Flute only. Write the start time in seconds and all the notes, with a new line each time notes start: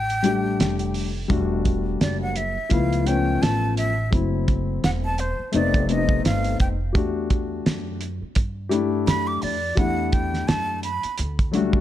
Already playing: G5
2.01 D5
2.22 F#5
2.37 E5
2.72 F5
3.07 G5
3.42 A5
3.78 E5
4.84 F#5
5.05 A5
5.20 C5
5.55 D5
5.91 D#5
6.25 F5
6.61 G5
9.07 B5
9.27 D6
9.42 D5
9.78 F#5
10.12 G5
10.48 A5
10.84 B5